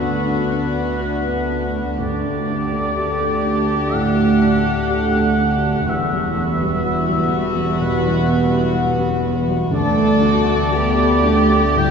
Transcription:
Already playing: grand piano D2 B3 D4 F#4, cello section D2, double bass section D2, harp B3 D4 F#4 B4, viola section B3, violin section D4 F#4
0.01 grand piano D2, harp D3, oboe B4
0.26 grand piano D3, harp D4
0.51 harp B3, grand piano D4, oboe B4
0.75 grand piano B3, harp F#4
0.99 grand piano F#4, oboe B4
1.25 grand piano B3, harp F#4
1.50 harp D4, grand piano D4
1.74 harp B3, grand piano B3
1.98 cello section D2, double bass section D2, grand piano D2, harp D3, viola section A3, violin section D4 G4, oboe D5
2.23 harp A3, grand piano A3
2.48 harp D4, grand piano D4
2.72 grand piano A3
2.97 grand piano G4, harp A4
3.20 grand piano A3
3.44 grand piano D4, harp D4
3.68 grand piano A3
3.92 grand piano A2, harp D3, oboe F#5
4.16 grand piano A3, harp D4
4.42 harp A3, grand piano D4
4.90 grand piano G4
5.15 grand piano A3
5.39 harp D4, grand piano D4
5.63 harp A3, grand piano A3
5.87 double bass section E1, grand piano E2, cello section E2, harp E3, viola section G3, violin section B3 F#4, oboe E5
6.11 harp G3, grand piano G3
6.35 harp B3, grand piano B3
6.59 grand piano G3, harp F#4
6.83 harp E4, grand piano F#4
7.08 grand piano G3, harp F#4
7.32 grand piano B3, harp B3
7.56 harp G3, grand piano G3
7.80 grand piano B2, harp E3, oboe B4
8.05 grand piano G3, harp B3
8.29 harp G3, grand piano B3
8.52 grand piano G3, harp F#4
8.75 grand piano F#4, harp B4
9.00 grand piano G3, harp F#4
9.25 grand piano B3, harp B3
9.48 grand piano G3, harp G3
9.71 grand piano D2, cello section D2, harp D3, viola section A3, violin section D4
9.75 double bass section D2, violin section A4, oboe D5
9.96 grand piano A3, harp A3
10.19 grand piano D4, harp D4
10.24 violin section F#4
10.45 grand piano A3
10.71 viola section B3, grand piano G4, violin section G4, harp A4
10.95 grand piano A3, harp G4
11.23 viola section A3, grand piano D4, harp D4
11.49 grand piano A3, harp A3
11.75 grand piano A2, harp D3, viola section G3, violin section G4, oboe G5

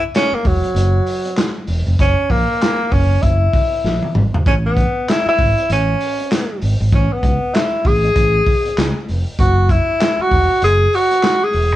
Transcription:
0.15 tenor saxophone C#4, snare, clap, closed hi-hat
0.32 tenor saxophone A#3, muted fingered electric bass stroke
0.45 fingered electric bass E1, tenor saxophone F#3, kick, open hi-hat
0.64 closed hi-hat
0.75 fingered electric bass F#1, closed hi-hat
1.06 open hi-hat
1.25 closed hi-hat
1.38 snare, clap, closed hi-hat
1.67 fingered electric bass E1, open hi-hat
1.86 fingered electric bass F1
1.99 fingered electric bass F#1, tenor saxophone C#4, kick, closed hi-hat
2.30 fingered electric bass A#1, tenor saxophone A#3, kick, open hi-hat
2.61 snare, clap, closed hi-hat
2.91 fingered electric bass F#1, tenor saxophone C#4, kick, open hi-hat
3.22 fingered electric bass F#1, tenor saxophone E4, kick, closed hi-hat
3.53 kick, open hi-hat
3.84 fingered electric bass A#1, snare
4.03 high tom
4.15 fingered electric bass G#1, mid tom
4.34 floor tom
4.46 fingered electric bass A1, tenor saxophone C#4, kick, closed hi-hat
4.66 tenor saxophone B3
4.77 kick, closed hi-hat
5.08 tenor saxophone E4, snare, clap, closed hi-hat
5.26 tenor saxophone E4, muted fingered electric bass stroke
5.38 fingered electric bass G#1, kick, open hi-hat
5.58 closed hi-hat
5.70 fingered electric bass A1, tenor saxophone C#4, closed hi-hat
6.00 open hi-hat
6.19 closed hi-hat
6.32 snare, clap, closed hi-hat
6.62 fingered electric bass G#1, open hi-hat
6.80 fingered electric bass G#1
6.92 fingered electric bass A1, tenor saxophone C#4, kick, closed hi-hat
7.13 tenor saxophone B3
7.23 fingered electric bass C#2, kick, closed hi-hat
7.54 tenor saxophone E4, snare, clap, closed hi-hat
7.85 fingered electric bass A1, tenor saxophone G#4, kick, open hi-hat
8.04 closed hi-hat
8.16 fingered electric bass A1, kick, closed hi-hat
8.46 kick, open hi-hat
8.65 closed hi-hat
8.78 fingered electric bass C#2, snare, clap, closed hi-hat
9.08 fingered electric bass F1, open hi-hat
9.39 fingered electric bass F#1, tenor saxophone F#4, kick, closed hi-hat
9.69 tenor saxophone E4, kick, closed hi-hat
10.00 snare, clap, closed hi-hat
10.19 tenor saxophone F#4, muted fingered electric bass stroke
10.31 fingered electric bass E1, kick, open hi-hat
10.62 fingered electric bass F#1, tenor saxophone G#4, closed hi-hat
10.93 tenor saxophone F#4, open hi-hat
11.11 closed hi-hat
11.24 snare, clap, closed hi-hat
11.44 tenor saxophone G#4
11.53 fingered electric bass E1, open hi-hat
11.72 fingered electric bass F1

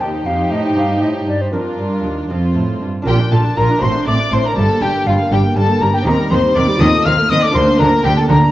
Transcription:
0.01 lute D#2, cello section D#2, viola section D#4, violin section G4 C5, flute G5
0.26 lute F2, cello section F2, flute F5
0.51 lute A2, cello section A2, flute D#5
0.66 flute G5
0.76 cello section G2, lute G2 D#4 G4 C5, flute F5
1.01 cello section A2, lute A2, flute D#5
1.27 lute G2, cello section G2, flute D5
1.42 flute C5
1.53 cello section F2, lute F2 D4 F4 A#4, viola section D4, violin section F4 A#4, flute A#4
1.79 lute G2, cello section G2
2.04 cello section D#2, lute D#2
2.30 lute F2 C4 F4 A4, cello section F2, viola section C4, violin section F4 A4
2.55 lute A2, cello section A2
2.81 lute G2, cello section G2
3.02 lute D4 F4 A#4
3.07 double bass section A#1, lute A#2, cello section A#2, viola section F4, violin section G4 G5, flute G5
3.20 viola section D4
3.32 double bass section A#1, lute A#2, cello section A#2, viola section F4, violin section A4 A5, flute A5
3.45 viola section D4
3.56 double bass section A#1, lute A#2, cello section A#2, viola section F4, violin section A#4 A#5, flute A#5
3.70 viola section D4
3.77 lute A3 F#4
3.82 double bass section A1, lute A2, cello section A2, viola section C4, violin section C5 C6, flute C6
3.95 viola section D4
4.06 double bass section A1, cello section A2, lute A2, viola section C4, violin section D5 D6, flute D6
4.20 viola section D4
4.31 double bass section A1, lute A2, cello section A2, viola section C4, violin section C5 C6, flute C6
4.44 viola section D4, violin section A#4 A#5, flute A#5
4.52 lute A#3 D4 G4
4.56 double bass section G1, lute G2, cello section G2, viola section G3, violin section A4 A5, flute A5
4.69 viola section A#3
4.81 double bass section G1, lute G2, cello section G2, viola section G3, violin section G4 G5, flute G5
4.94 viola section A#3
5.06 double bass section G1, cello section G2, lute G2, viola section G3, violin section F4 F5, flute F5
5.19 viola section A#3
5.31 double bass section G1, cello section G2, lute G2, viola section G3, violin section G4 G5, flute G5
5.45 viola section A#3
5.56 double bass section G1, cello section G2, lute G2, viola section G3, violin section A4 A5, flute A5
5.69 viola section A#3
5.81 double bass section G1, cello section G2, lute G2, viola section G3, violin section A#4 A#5, flute A#5
5.94 viola section A#3, violin section G4 G5, flute G5
6.02 lute C4 D#4 G4, violin section A#5
6.06 double bass section D#2, cello section D#3, lute D#3, viola section C4, violin section A#4, flute A#5
6.19 viola section G3
6.31 double bass section D#2, cello section D#3, lute D#3, viola section C4, violin section C5 C6, flute C6
6.44 viola section G3
6.56 double bass section D#2, cello section D#3, lute D#3, viola section C4, violin section D5 D6, flute D6
6.69 viola section G3
6.76 lute C4 F4 A4, violin section D#6
6.80 double bass section D#2, cello section D#3, lute D#3, viola section C4, violin section D#5, flute D#6
6.94 viola section A3
7.05 double bass section D#2, cello section D#3, lute D#3, viola section C4, violin section F5 F6, flute F6
7.18 viola section A3
7.30 double bass section D#2, cello section D#3, lute D#3, viola section C4, violin section D#5 D#6, flute D#6
7.42 viola section A3, violin section D5 D6, flute D6
7.51 lute D4 F4 A#4, violin section C5
7.55 double bass section D2, cello section D3, lute D3, viola section D4, flute C6, violin section C6
7.67 viola section A#3
7.79 double bass section D2, cello section D3, lute D3, viola section D4, violin section A#4 A#5, flute A#5
7.92 viola section A#3
8.04 double bass section D2, lute D3, cello section D3, viola section D4, violin section G4 G5, flute G5
8.17 viola section A#3, violin section A4 A5, flute A5
8.29 double bass section D2, lute D3, cello section D3, viola section D4, violin section A#4 A#5, flute A#5
8.42 viola section A#3

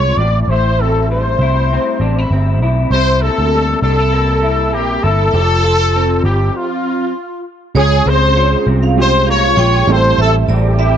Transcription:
Already playing: picked electric bass C2, clean electric guitar G#3 C4 F4, trumpet C#5
0.17 picked electric bass A1, clean electric guitar A2, trumpet D5
0.42 trumpet D5
0.48 picked electric bass A1, clean electric guitar A2 E4, trumpet C5
0.80 clean electric guitar C4, trumpet A4
1.11 clean electric guitar G3, trumpet C5
1.39 picked electric bass C2, clean electric guitar E4
1.73 clean electric guitar C4
2.00 picked electric bass A1, clean electric guitar D4
2.19 clean electric guitar E4
2.31 picked electric bass G1, clean electric guitar C4
2.61 picked electric bass B1, clean electric guitar E4
2.91 picked electric bass C2, clean electric guitar C3 E4, trumpet C5
3.21 clean electric guitar A#3, trumpet A4
3.38 picked electric bass D2
3.54 clean electric guitar G3
3.82 picked electric bass C2, clean electric guitar D4, trumpet A4
3.99 clean electric guitar E4
4.13 clean electric guitar A#3
4.43 clean electric guitar E4
4.73 picked electric bass A#1, clean electric guitar A#3, trumpet G4
5.03 picked electric bass G1, clean electric guitar E4, trumpet A4
5.33 picked electric bass F1, clean electric guitar F3 G4
5.64 clean electric guitar F4
5.95 clean electric guitar C4
6.24 picked electric bass G1, trumpet G4, clean electric guitar G4
6.56 trumpet F4
7.75 picked electric bass C#2, clean electric guitar C#3, upright piano G#3 C#4 F4 G#4, trumpet G#4, vibraphone C#5
8.05 picked electric bass C#2, clean electric guitar C4, vibraphone C5, trumpet C5
8.36 clean electric guitar F4, vibraphone C#5
8.67 picked electric bass C2, clean electric guitar C4
8.83 vibraphone F5
8.97 upright piano G#3 C#4 F4 G4, clean electric guitar F4, trumpet C5
9.26 clean electric guitar A#3, vibraphone F5
9.30 trumpet C#5
9.57 picked electric bass A#1, clean electric guitar F4, vibraphone G5
9.87 picked electric bass A1, clean electric guitar A2, upright piano G3 C4 E4 A4
9.92 trumpet C5
10.18 picked electric bass A1, clean electric guitar A2, trumpet A4, vibraphone E5
10.49 picked electric bass A1, clean electric guitar C4, vibraphone D5
10.53 trumpet G4
10.79 clean electric guitar E4, vibraphone E5

